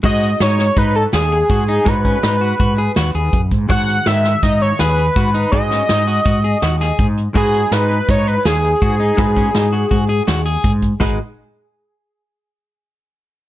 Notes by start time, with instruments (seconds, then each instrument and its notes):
0.03 fretless electric bass G#2, hollow-body jazz guitar G#3 D#4 F#4 C#5, clean electric guitar F#4, analog synth lead D#5, kick, closed hi-hat
0.22 closed hi-hat
0.40 fretless electric bass G#2, clean electric guitar D#4, analog synth lead C#5, snare, closed hi-hat
0.59 snare, closed hi-hat
0.77 fretless electric bass G#2, clean electric guitar D#4, analog synth lead B4, kick, closed hi-hat
0.95 analog synth lead A4, closed hi-hat
1.13 fretless electric bass D#2, clean electric guitar G#4, analog synth lead G#4, snare, closed hi-hat
1.31 closed hi-hat
1.50 fretless electric bass G#2, clean electric guitar F#4, kick, closed hi-hat
1.68 clean electric guitar D#4, closed hi-hat
1.85 fretless electric bass G#2, hollow-body jazz guitar G#3 D#4 F#4 C#5, analog synth lead B4, kick, closed hi-hat
2.05 clean electric guitar C#4, kick, closed hi-hat
2.23 fretless electric bass G#2, clean electric guitar D#4, snare, closed hi-hat
2.41 clean electric guitar F#4, closed hi-hat
2.60 fretless electric bass G#2, clean electric guitar F#4, kick, closed hi-hat
2.78 clean electric guitar G#4, closed hi-hat
2.96 fretless electric bass D#2, clean electric guitar F#4, snare, closed hi-hat
3.14 fretless electric bass D#2, clean electric guitar G#4, closed hi-hat
3.33 fretless electric bass F#2, kick, closed hi-hat
3.51 fretless electric bass G#2, kick, closed hi-hat
3.69 fretless electric bass G#2, hollow-body jazz guitar D#3 G#3 F#4 C#5, clean electric guitar F#4, analog synth lead F#5, kick, closed hi-hat
3.88 closed hi-hat
4.06 fretless electric bass G#2, clean electric guitar D#3, analog synth lead E5, snare, closed hi-hat
4.24 snare, closed hi-hat
4.43 fretless electric bass G#2, clean electric guitar D#4, analog synth lead D#5, kick, snare, closed hi-hat
4.61 analog synth lead C#5, closed hi-hat
4.79 fretless electric bass D#2, clean electric guitar G#4, analog synth lead B4, snare, closed hi-hat
4.97 closed hi-hat
5.16 fretless electric bass G#2, clean electric guitar F#4, kick, snare, closed hi-hat
5.34 clean electric guitar D#4, closed hi-hat
5.52 fretless electric bass G#2, hollow-body jazz guitar G#3 D#4 F#4 G#4, analog synth lead D#5, kick, closed hi-hat
5.71 clean electric guitar C#4, snare, closed hi-hat
5.89 fretless electric bass G#2, clean electric guitar D#4, snare, closed hi-hat
6.07 clean electric guitar F#4, closed hi-hat
6.25 fretless electric bass G#2, clean electric guitar F#4, kick, closed hi-hat
6.44 clean electric guitar G#4, closed hi-hat
6.62 fretless electric bass D#2, clean electric guitar F#4, snare, closed hi-hat
6.81 clean electric guitar G#4, snare, closed hi-hat
6.99 fretless electric bass G#2, kick, closed hi-hat
7.17 closed hi-hat
7.34 fretless electric bass G#2, hollow-body jazz guitar G#3 D#4 F#4 B4, clean electric guitar F#4, analog synth lead G#4, kick, closed hi-hat
7.54 closed hi-hat
7.71 fretless electric bass G#2, clean electric guitar D#4, analog synth lead B4, snare, closed hi-hat
7.91 closed hi-hat
8.09 fretless electric bass G#2, clean electric guitar D#4, analog synth lead C#5, kick, closed hi-hat
8.27 analog synth lead B4, closed hi-hat
8.45 fretless electric bass D#2, clean electric guitar G#4, analog synth lead G#4, snare, closed hi-hat
8.64 closed hi-hat
8.82 fretless electric bass G#2, clean electric guitar F#4, kick, closed hi-hat
9.00 clean electric guitar D#4, closed hi-hat
9.17 fretless electric bass G#2, hollow-body jazz guitar G#3 D#4 F#4 B4, kick, closed hi-hat
9.37 clean electric guitar C#4, kick, closed hi-hat
9.55 fretless electric bass G#2, clean electric guitar D#4, snare, closed hi-hat
9.73 clean electric guitar F#4, closed hi-hat
9.91 fretless electric bass G#2, clean electric guitar F#4, kick, closed hi-hat
10.09 clean electric guitar G#4, closed hi-hat
10.27 fretless electric bass D#2, clean electric guitar F#4, snare, closed hi-hat
10.46 clean electric guitar G#4, closed hi-hat
10.64 fretless electric bass G#2, kick, closed hi-hat
10.82 kick, closed hi-hat
11.00 fretless electric bass G#1, hollow-body jazz guitar G#3 D#4 F#4 B4, clean electric guitar G#3, kick, crash